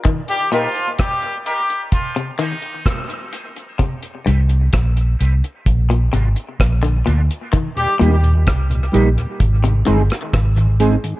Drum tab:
HH |xxxxxxxxxxxxxxxx|xxxxxxxxxxxxxxxx|xxxxxxxxxxxxxxxx|
SD |----r-------r---|----r-------r---|----r------rr---|
BD |o---o---o---o---|o---o---o---o---|o---o---o---o---|